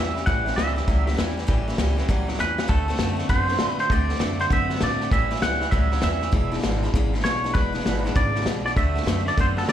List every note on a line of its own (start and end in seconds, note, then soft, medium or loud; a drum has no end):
0.00 0.22 E2 medium
0.00 0.14 A2 medium
0.00 0.14 E3 loud
0.00 0.16 E3 medium
0.00 0.17 G3 medium
0.00 0.16 C#4 medium
0.00 0.15 G4 medium
0.00 0.26 E5 loud
0.16 0.25 A2 medium
0.16 0.25 E3 medium
0.16 0.26 G3 soft
0.16 0.27 C#4 soft
0.16 0.27 G4 soft
0.16 snare soft
0.26 0.52 A1 medium
0.26 0.43 A2 medium
0.26 0.46 A2 medium
0.26 0.44 E3 loud
0.26 0.46 E3 medium
0.26 0.47 G3 medium
0.26 0.46 C#4 medium
0.26 0.45 G4 medium
0.26 0.56 F#5 loud
0.26 kick loud
0.26 snare soft
0.45 0.55 A2 medium
0.45 0.56 E3 medium
0.45 0.57 G3 soft
0.45 0.58 C#4 medium
0.45 0.57 G4 medium
0.45 snare soft
0.52 1.13 E5 loud
0.52 snare soft
0.56 0.82 C#2 loud
0.56 0.74 A2 medium
0.56 0.76 E3 medium
0.56 0.74 E3 medium
0.56 0.77 G3 medium
0.56 0.76 C#4 medium
0.56 0.75 G4 medium
0.56 snare loud
0.56 hi-hat pedal medium
0.76 0.86 A2 medium
0.76 0.86 E3 medium
0.76 0.87 G3 soft
0.76 0.88 C#4 soft
0.76 0.87 G4 medium
0.76 snare soft
0.87 1.13 C#2 medium
0.87 1.05 A2 medium
0.87 1.07 A2 medium
0.87 1.07 E3 medium
0.87 1.05 F#3 medium
0.87 1.07 G3 medium
0.87 1.07 C#4 medium
0.87 1.06 G4 medium
0.87 kick loud
0.87 snare soft
1.06 1.16 A2 medium
1.06 1.17 F#3 medium
1.06 1.17 G3 medium
1.06 1.18 C#4 medium
1.06 1.18 G4 medium
1.06 snare soft
1.13 snare soft
1.17 1.43 E2 medium
1.17 1.35 A2 medium
1.17 1.37 E3 medium
1.17 1.35 E3 loud
1.17 1.37 G3 medium
1.17 1.38 C#4 medium
1.17 1.36 G4 medium
1.17 snare loud
1.17 hi-hat pedal medium
1.37 1.47 A2 medium
1.37 1.47 E3 medium
1.37 1.47 G3 medium
1.37 1.48 C#4 medium
1.37 1.48 G4 medium
1.37 snare soft
1.47 1.74 A1 loud
1.47 1.67 A2 medium
1.47 1.66 A2 medium
1.47 1.67 E3 medium
1.47 1.66 E3 loud
1.47 1.67 G3 medium
1.47 1.68 C#4 medium
1.47 1.66 G4 medium
1.47 kick loud
1.47 snare soft
1.68 1.77 A2 medium
1.68 1.78 E3 medium
1.68 1.78 G3 medium
1.68 1.78 C#4 medium
1.68 1.78 G4 medium
1.68 snare soft
1.73 snare soft
1.78 2.03 C#2 medium
1.78 1.96 A2 medium
1.78 1.97 E3 medium
1.78 1.96 E3 medium
1.78 1.97 G3 medium
1.78 1.97 C#4 medium
1.78 1.95 G4 medium
1.78 snare loud
1.78 hi-hat pedal medium
1.96 2.07 A2 medium
1.96 2.08 E3 medium
1.96 2.08 G3 soft
1.96 2.09 C#4 medium
1.96 2.08 G4 medium
1.96 snare soft
2.08 2.34 C#2 medium
2.08 2.28 A2 medium
2.08 2.26 A2 medium
2.08 2.28 E3 medium
2.08 2.26 F#3 medium
2.08 2.28 G3 medium
2.08 2.27 C#4 medium
2.08 2.26 G4 loud
2.08 kick loud
2.08 snare soft
2.27 2.37 A2 medium
2.27 2.38 F#3 medium
2.27 2.38 G3 soft
2.27 2.39 C#4 medium
2.27 2.38 G4 medium
2.27 snare soft
2.34 2.58 E3 medium
2.34 snare soft
2.38 2.65 E2 medium
2.38 2.56 A2 loud
2.38 2.56 E3 loud
2.38 2.58 G3 medium
2.38 2.59 C#4 medium
2.38 2.68 B4 medium
2.38 snare medium
2.38 hi-hat pedal medium
2.58 2.68 A2 medium
2.58 2.68 E3 medium
2.58 2.68 G3 soft
2.58 2.68 C#4 soft
2.58 2.69 G4 medium
2.58 snare medium
2.68 2.94 D2 loud
2.68 2.88 D3 medium
2.68 2.87 D3 medium
2.68 2.88 A3 medium
2.68 2.87 A3 loud
2.68 2.88 C4 medium
2.68 2.87 F#4 medium
2.68 3.15 A4 medium
2.68 kick loud
2.68 snare soft
2.88 2.98 D3 medium
2.88 2.98 A3 medium
2.88 3.00 A3 soft
2.88 3.00 C4 medium
2.88 2.99 F#4 medium
2.88 snare soft
2.95 snare soft
2.99 3.24 F#2 loud
2.99 3.16 D3 medium
2.99 3.19 D3 medium
2.99 3.17 A3 loud
2.99 3.19 A3 medium
2.99 3.18 C4 medium
2.99 3.15 F#4 medium
2.99 snare loud
2.99 hi-hat pedal loud
3.17 3.28 D3 medium
3.17 3.29 A3 medium
3.17 3.28 A3 soft
3.17 3.29 C4 medium
3.17 3.28 F#4 medium
3.17 snare soft
3.29 3.55 F#2 medium
3.29 3.49 D3 medium
3.29 3.47 D3 medium
3.29 3.49 A3 medium
3.29 3.47 B3 medium
3.29 3.48 C4 medium
3.29 3.46 F#4 medium
3.29 3.68 C5 medium
3.29 kick loud
3.29 snare soft
3.48 3.58 D3 medium
3.48 3.59 A3 soft
3.48 3.59 B3 medium
3.48 3.60 C4 soft
3.48 3.59 F#4 medium
3.48 snare soft
3.54 snare soft
3.59 3.79 D3 medium
3.59 3.77 D3 medium
3.59 3.77 A3 loud
3.59 3.80 A3 medium
3.59 3.80 C4 medium
3.59 3.79 F#4 medium
3.59 snare loud
3.59 hi-hat pedal medium
3.68 3.79 B4 medium
3.78 3.89 D3 medium
3.78 3.89 A3 medium
3.78 3.91 C4 medium
3.78 3.91 F#4 soft
3.78 3.92 C5 medium
3.78 snare soft
3.83 3.91 A3 soft
3.89 4.15 D2 loud
3.89 4.07 D3 medium
3.89 4.10 D3 medium
3.89 4.07 A3 medium
3.89 4.10 A3 medium
3.89 4.10 C4 medium
3.89 4.09 F#4 medium
3.89 4.40 D5 loud
3.89 kick loud
3.89 snare soft
4.09 4.18 D3 medium
4.09 4.19 A3 medium
4.09 4.20 C4 soft
4.09 4.21 F#4 medium
4.09 snare soft
4.15 snare soft
4.19 4.46 F#2 loud
4.19 4.39 D3 medium
4.19 4.37 D3 medium
4.19 4.38 A3 medium
4.19 4.40 A3 medium
4.19 4.40 C4 medium
4.19 4.38 F#4 medium
4.19 snare loud
4.19 hi-hat pedal medium
4.39 4.48 D3 medium
4.39 4.49 A3 medium
4.39 4.50 A3 soft
4.39 4.51 C4 medium
4.39 4.50 F#4 medium
4.39 4.45 C5 medium
4.39 snare soft
4.49 4.76 F#2 medium
4.49 4.67 D3 medium
4.49 4.70 D3 medium
4.49 4.71 A3 medium
4.49 4.68 B3 medium
4.49 4.70 C4 medium
4.49 4.69 F#4 loud
4.49 4.80 E5 medium
4.49 kick loud
4.49 snare soft
4.69 4.79 D3 medium
4.69 4.80 A3 soft
4.69 4.80 B3 medium
4.69 4.82 C4 soft
4.69 4.81 F#4 soft
4.69 snare soft
4.75 snare soft
4.81 5.07 A2 medium
4.81 4.98 D3 medium
4.81 5.00 D3 medium
4.81 4.98 A3 loud
4.81 5.01 A3 medium
4.81 5.01 C4 medium
4.81 5.00 F#4 medium
4.81 5.11 D5 loud
4.81 snare loud
4.81 hi-hat pedal medium
5.00 5.10 D3 medium
5.00 5.10 A3 medium
5.00 5.12 A3 soft
5.00 5.12 C4 soft
5.00 5.12 F#4 soft
5.00 snare soft
5.11 5.37 A1 loud
5.11 5.28 A2 loud
5.11 5.31 A2 medium
5.11 5.29 E3 loud
5.11 5.31 E3 medium
5.11 5.31 G3 medium
5.11 5.31 C#4 medium
5.11 5.29 E4 medium
5.11 5.42 E5 loud
5.11 kick loud
5.11 snare soft
5.30 5.40 A2 medium
5.30 5.41 E3 medium
5.30 5.42 G3 soft
5.30 5.43 C#4 medium
5.30 5.42 E4 medium
5.30 snare soft
5.36 snare soft
5.42 5.67 C#2 loud
5.42 5.59 A2 medium
5.42 5.61 E3 medium
5.42 5.60 E3 medium
5.42 5.62 G3 medium
5.42 5.61 C#4 medium
5.42 5.60 E4 medium
5.42 5.70 F#5 loud
5.42 snare loud
5.42 hi-hat pedal medium
5.60 5.71 A2 medium
5.60 5.71 E3 loud
5.60 5.72 G3 soft
5.60 5.73 C#4 soft
5.60 5.72 E4 medium
5.60 snare soft
5.71 5.97 C#2 loud
5.71 5.91 A2 medium
5.71 5.89 A2 medium
5.71 5.92 E3 medium
5.71 5.89 F#3 medium
5.71 5.92 G3 medium
5.71 5.92 C#4 medium
5.71 5.91 E4 medium
5.71 6.02 E5 loud
5.71 kick loud
5.71 snare soft
5.92 6.01 A2 medium
5.92 6.02 F#3 medium
5.92 6.01 G3 soft
5.92 6.02 C#4 soft
5.92 6.03 E4 soft
5.92 snare soft
5.97 snare soft
6.01 6.28 E2 medium
6.01 6.20 A2 medium
6.01 6.21 E3 medium
6.01 6.20 E3 loud
6.01 6.22 G3 medium
6.01 6.21 C#4 medium
6.01 6.20 E4 medium
6.01 6.49 E5 medium
6.01 snare loud
6.01 hi-hat pedal medium
6.21 6.32 A2 medium
6.21 6.32 E3 medium
6.21 6.32 G3 soft
6.21 6.33 C#4 soft
6.21 6.32 E4 soft
6.21 snare soft
6.32 6.58 E1 loud
6.32 6.52 E2 medium
6.32 6.50 E2 medium
6.32 6.52 B2 medium
6.32 6.50 B2 medium
6.32 6.52 E3 medium
6.32 6.52 G#3 medium
6.32 6.51 D4 medium
6.32 6.50 E4 medium
6.32 kick loud
6.32 snare soft
6.51 6.61 E2 medium
6.51 6.62 B2 medium
6.51 6.61 E3 soft
6.51 6.62 G#3 medium
6.51 6.62 D4 medium
6.51 6.63 E4 medium
6.51 snare soft
6.59 6.80 E2 medium
6.59 6.82 E3 medium
6.59 snare soft
6.63 6.88 G#1 loud
6.63 6.81 B2 medium
6.63 6.82 G#3 medium
6.63 6.82 D4 medium
6.63 6.81 E4 medium
6.63 snare loud
6.63 hi-hat pedal medium
6.82 6.92 E2 medium
6.82 6.93 B2 medium
6.82 6.94 E3 soft
6.82 6.94 G#3 medium
6.82 6.94 D4 medium
6.82 6.94 E4 medium
6.82 snare soft
6.93 7.19 G#1 medium
6.93 7.11 E2 medium
6.93 7.14 E2 medium
6.93 7.14 B2 medium
6.93 7.11 C#3 medium
6.93 7.14 E3 loud
6.93 7.14 G#3 loud
6.93 7.13 D4 medium
6.93 7.12 E4 loud
6.93 kick loud
6.93 snare soft
7.12 7.22 E2 medium
7.12 7.23 C#3 medium
7.12 7.22 E3 soft
7.12 7.23 G#3 soft
7.12 7.24 D4 soft
7.12 7.24 E4 medium
7.12 snare soft
7.20 7.49 B1 medium
7.20 7.41 E2 medium
7.20 7.41 B2 loud
7.20 7.43 E3 medium
7.20 7.52 C#5 loud
7.20 snare soft
7.25 7.44 G#3 medium
7.25 7.43 D4 medium
7.25 7.43 E4 medium
7.25 snare medium
7.25 hi-hat pedal medium
7.44 7.53 E2 medium
7.44 7.54 B2 medium
7.44 7.53 E3 soft
7.44 7.53 G#3 soft
7.44 7.54 D4 medium
7.44 7.55 E4 medium
7.44 snare soft
7.54 7.80 E1 medium
7.54 7.74 E2 medium
7.54 7.72 E2 medium
7.54 7.74 B2 medium
7.54 7.72 B2 medium
7.54 7.74 E3 medium
7.54 7.73 G#3 medium
7.54 7.72 D4 medium
7.54 7.71 E4 medium
7.54 8.17 B4 loud
7.54 kick loud
7.54 snare soft
7.73 7.84 E2 medium
7.73 7.84 B2 medium
7.73 7.83 E3 soft
7.73 7.84 G#3 soft
7.73 7.85 D4 soft
7.73 7.84 E4 medium
7.73 snare soft
7.80 snare soft
7.84 8.10 G#1 medium
7.84 8.03 E2 medium
7.84 8.03 B2 medium
7.84 8.04 E3 medium
7.84 8.05 G#3 medium
7.84 8.05 D4 medium
7.84 8.03 E4 medium
7.84 snare loud
7.84 hi-hat pedal medium
8.04 8.14 E2 medium
8.04 8.15 B2 medium
8.04 8.14 E3 medium
8.04 8.15 G#3 medium
8.04 8.15 D4 medium
8.04 8.15 E4 medium
8.04 snare soft
8.15 8.41 G#1 medium
8.15 8.35 E2 medium
8.15 8.33 E2 medium
8.15 8.35 B2 medium
8.15 8.33 C#3 medium
8.15 8.35 E3 medium
8.15 8.35 G#3 medium
8.15 8.35 D4 medium
8.15 8.34 E4 medium
8.15 8.44 D5 loud
8.15 kick loud
8.15 snare soft
8.35 8.44 E2 medium
8.35 8.45 C#3 medium
8.35 8.46 E3 soft
8.35 8.47 G#3 soft
8.35 8.47 D4 soft
8.35 8.46 E4 medium
8.35 snare soft
8.40 snare soft
8.45 8.71 B1 medium
8.45 8.63 E2 medium
8.45 8.63 B2 medium
8.45 8.66 E3 medium
8.45 8.66 G#3 medium
8.45 snare loud
8.45 hi-hat pedal medium
8.49 8.66 D4 medium
8.49 8.65 E4 medium
8.64 8.75 E2 medium
8.64 8.75 B2 medium
8.64 8.76 G#3 medium
8.64 8.77 D4 soft
8.64 8.77 E4 medium
8.64 8.71 D5 medium
8.64 snare soft
8.69 8.76 E3 soft
8.76 9.02 D2 loud
8.76 8.93 D3 medium
8.76 8.96 D3 medium
8.76 8.94 A3 loud
8.76 8.96 A3 medium
8.76 8.96 C4 medium
8.76 8.94 F#4 medium
8.76 9.28 E5 loud
8.76 kick loud
8.76 snare soft
8.95 9.05 D3 medium
8.95 9.05 A3 medium
8.95 9.07 A3 soft
8.95 9.07 C4 medium
8.95 9.06 F#4 medium
8.95 snare soft
9.02 9.32 F#2 loud
9.02 9.24 D3 medium
9.02 9.24 A3 medium
9.02 snare soft
9.07 9.26 D3 medium
9.07 9.27 A3 medium
9.07 9.27 C4 medium
9.07 9.26 F#4 medium
9.07 snare loud
9.07 hi-hat pedal loud
9.26 9.36 D3 medium
9.26 9.36 A3 medium
9.26 9.37 C4 soft
9.26 9.37 F#4 medium
9.26 9.38 D5 loud
9.26 snare soft
9.30 9.37 A3 soft
9.37 9.63 F#2 loud
9.37 9.55 D3 medium
9.37 9.57 D3 medium
9.37 9.57 A3 medium
9.37 9.55 B3 medium
9.37 9.57 C4 medium
9.37 9.56 F#4 medium
9.37 9.46 C5 medium
9.37 kick loud
9.37 snare soft
9.56 9.66 D3 medium
9.56 9.67 A3 soft
9.56 9.66 B3 loud
9.56 9.68 C4 soft
9.56 9.68 F#4 medium
9.56 9.63 A4 medium
9.56 snare soft
9.63 9.72 D3 medium
9.63 snare soft
9.67 9.72 G1 medium
9.67 9.72 D3 medium
9.67 9.72 A3 loud
9.67 9.72 A3 medium
9.67 9.72 D5 loud
9.67 snare loud
9.67 hi-hat pedal medium